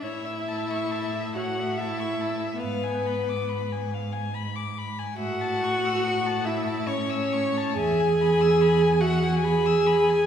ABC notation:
X:1
M:3/4
L:1/16
Q:1/4=70
K:A
V:1 name="Violin"
c e a c' a e c e a c' a e | ^e g b d' b g e g b d' b g | e a c' e' c' a e a c' e' c' a | e g b e' b g e g b e' b g |]
V:2 name="Violin"
e6 f2 e4 | B6 z6 | f6 e2 c4 | g6 f2 g4 |]
V:3 name="Viola"
E6 F2 E4 | B,6 z6 | F6 E2 C4 | G6 F2 G4 |]
V:4 name="Cello" clef=bass
A,,12 | G,,12 | A,,12 | E,,12 |]